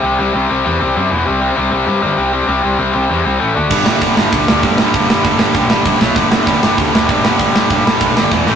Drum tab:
CC |--------|--------|--------|x-------|
HH |--------|--------|--------|--o-o-o-|
SD |--------|--------|--------|-o-o-o-o|
BD |--------|--------|--------|o-o-o-o-|

CC |--------|--------|--------|
HH |o-o-o-o-|o-o-o-o-|o-o-o---|
SD |-o-o-o-o|-o-o-o-o|-o-o-ooo|
BD |o-o-o-o-|o-o-o-o-|o-o-o-o-|